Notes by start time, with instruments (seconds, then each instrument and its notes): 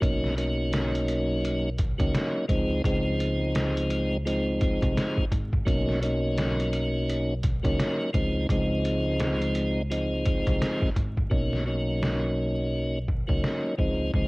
0.00 fingered electric bass B1, tonewheel organ F#3 A#3 C#4 D#4, kick, closed hi-hat
0.24 snare
0.37 tonewheel organ F#3 A#3 C#4 D#4, closed hi-hat
0.73 snare, closed hi-hat
0.95 closed hi-hat
1.08 closed hi-hat
1.45 closed hi-hat
1.79 kick, closed hi-hat
1.98 fingered electric bass C#2, tonewheel organ F#3 A#3 C#4 D#4, kick, closed hi-hat
2.15 snare, closed hi-hat
2.48 fingered electric bass C#2, tonewheel organ F3 G#3 C4 D#4, kick, closed hi-hat
2.84 fingered electric bass C#2, tonewheel organ F3 G#3 C4 D#4, kick, closed hi-hat
3.20 closed hi-hat
3.55 snare, closed hi-hat
3.77 closed hi-hat
3.90 closed hi-hat
4.25 tonewheel organ F3 G#3 C4 D#4, closed hi-hat
4.61 kick, closed hi-hat
4.82 fingered electric bass C2, kick, closed hi-hat
4.97 snare, closed hi-hat
5.17 kick
5.32 fingered electric bass G#1, kick, closed hi-hat
5.53 kick
5.65 fingered electric bass B1, tonewheel organ F#3 A#3 C#4 D#4, kick, closed hi-hat
5.89 snare
6.02 tonewheel organ F#3 A#3 C#4 D#4, closed hi-hat
6.38 snare, closed hi-hat
6.60 closed hi-hat
6.73 closed hi-hat
7.09 closed hi-hat
7.43 kick, closed hi-hat
7.63 fingered electric bass C#2, tonewheel organ F#3 A#3 C#4 D#4, kick, closed hi-hat
7.79 snare, closed hi-hat
8.13 fingered electric bass C#2, tonewheel organ F3 G#3 C4 D#4, kick, closed hi-hat
8.49 fingered electric bass C#2, tonewheel organ F3 G#3 C4 D#4, kick, closed hi-hat
8.85 closed hi-hat
9.20 snare, closed hi-hat
9.42 closed hi-hat
9.55 closed hi-hat
9.90 tonewheel organ F3 G#3 C4 D#4, closed hi-hat
10.25 kick, closed hi-hat
10.47 fingered electric bass C2, kick, closed hi-hat
10.62 snare, closed hi-hat
10.82 kick, snare
10.96 fingered electric bass G#1, kick, closed hi-hat
11.17 kick
11.30 fingered electric bass B1, tonewheel organ F#3 A#3 C#4 D#4, kick
11.53 snare
11.66 tonewheel organ F#3 A#3 C#4 D#4
12.03 snare
13.08 kick
13.27 fingered electric bass C#2, tonewheel organ F#3 A#3 C#4 D#4, kick
13.44 snare
13.78 fingered electric bass C#2, tonewheel organ F3 G#3 C4 D#4, kick
14.14 fingered electric bass C#2, tonewheel organ F3 G#3 C4 D#4, kick